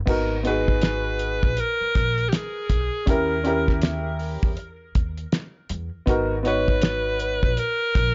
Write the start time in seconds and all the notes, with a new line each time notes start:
0.06 G#1 B3 D#4 F#4 A#4, kick, crash
0.43 B3 D#4 F#4 G#4 B4, closed hi-hat
0.68 kick
0.81 snare, closed hi-hat
1.19 closed hi-hat
1.43 A#1, kick
1.57 A#4, closed hi-hat
1.81 muted upright bass stroke
1.95 A#1, kick, closed hi-hat
2.18 closed hi-hat
2.29 G4, closed hi-hat
2.33 G#4, snare
2.70 B1, kick, closed hi-hat
3.06 D#2 C#4 E4 G4 A#4, kick, closed hi-hat
3.44 C#4 E4 G4 A#4, closed hi-hat
3.68 kick, snare
3.82 snare, closed hi-hat
4.19 open hi-hat
4.43 E2, kick
4.57 closed hi-hat
4.95 D#2, kick, closed hi-hat
5.18 closed hi-hat
5.32 snare, closed hi-hat
5.69 E2, closed hi-hat
6.06 G#1 B3 D#4 F#4 A#4, kick, closed hi-hat
6.43 B3 D#4 F#4 C#5, closed hi-hat
6.48 B4
6.68 kick
6.82 snare, closed hi-hat
7.19 closed hi-hat
7.43 A#1, kick
7.57 A#4, closed hi-hat
7.95 A#1, kick, closed hi-hat